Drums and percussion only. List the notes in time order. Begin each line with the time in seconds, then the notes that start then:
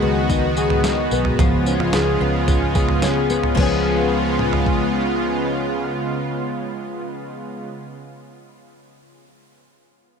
0.30 kick, tambourine
0.57 tambourine
0.70 floor tom
0.84 snare, tambourine
1.11 tambourine
1.25 floor tom
1.39 kick, floor tom, tambourine
1.66 tambourine
1.80 floor tom
1.93 snare, tambourine
2.48 kick, floor tom, tambourine
2.75 kick, tambourine
2.89 floor tom
3.02 snare, tambourine
3.30 tambourine
3.43 floor tom
3.57 kick, crash
4.39 mid tom
4.53 floor tom
4.66 kick